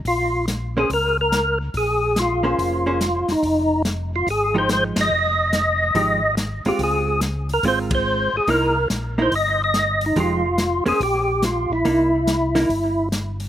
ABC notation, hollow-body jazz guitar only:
X:1
M:4/4
L:1/8
Q:"Swing" 1/4=142
K:Fm
V:1 name="Hollow-body jazz guitar"
z3 [B,DAc] z4 | z3 [B,DAc]2 [B,DAc] z2 | z4 z [F,A,EG]3 | z4 [F,A,EG] z2 [A,CF]- |
[A,CF]2 z2 [A,CF]3 z | [B,^D=E] z2 [B,DE] z4 | [F,A,EG] z2 [B,DAc] z4 | [B,^D=E] z2 [B,DE] z4 |]